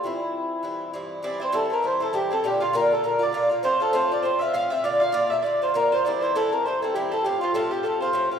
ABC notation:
X:1
M:4/4
L:1/16
Q:"Swing" 1/4=200
K:Cmix
V:1 name="Marimba"
E12 z4 | d2 c2 A2 B2 c2 A2 G2 A2 | G4 B2 z2 B2 d4 z2 | c2 A2 c2 d2 c2 e2 f2 e2 |
d3/2 e/2 f2 d2 e2 d2 c2 B2 c2 | d2 c2 A2 B2 c4 G2 A2 | G2 F2 A2 G2 A2 c4 z2 |]
V:2 name="Mandolin"
z16 | d2 c2 A2 B2 c2 A2 G2 A2 | G2 F2 B2 A2 B2 d4 z2 | c2 A2 c2 d2 c2 e2 f2 e2 |
d2 f2 d2 e2 d2 c2 B2 c2 | d2 c2 A2 B2 c2 A2 G2 A2 | G2 F2 A2 G2 A2 c4 z2 |]
V:3 name="Accordion"
E12 z4 | d2 c2 A2 B2 c2 A2 G2 A2 | G2 F2 B2 A2 B2 d4 z2 | c2 A2 c2 d2 c2 e2 f2 e2 |
d2 f2 d2 e2 d2 c2 B2 c2 | d2 c2 A2 B2 c2 A2 G2 A2 | G2 F2 A2 G2 A2 c4 z2 |]
V:4 name="Bouzouki"
[G,,E,CE]8 [G,,E,CE]4 [G,,E,CE]4 | [G,,E,CE]2 [E,CE]2 [G,,E,CE]2 [E,CE]2 [G,,E,CE]2 [E,CE]2 [G,,E,CE]2 [E,CE]2 | [B,,D,B,F]2 [D,B,F]2 [B,,D,B,F]2 [D,B,F]2 [B,,D,B,F]2 [D,B,F]2 [B,,D,B,F]2 [D,B,F]2 | [A,,F,CF]2 [F,CF]2 [A,,F,CF]2 [F,CF]2 [A,,F,CF]2 [F,CF]2 [A,,F,CF]2 [F,CF]2 |
[B,,D,B,F]2 [D,B,F]2 [B,,D,B,F]2 [D,B,F]2 [B,,D,B,F]2 [D,B,F]2 [B,,D,B,F]2 [D,B,F]2 | [G,,E,CE]2 [E,CE]2 [G,,E,CE]2 [E,CE]2 [G,,E,CE]2 [E,CE]2 [G,,E,CE]2 [E,CE]2 | [A,,F,CF]2 [F,CF]2 [A,,F,CF]2 [F,CF]2 [A,,F,CF]2 [F,CF]2 [A,,F,CF]2 [F,CF]2 |]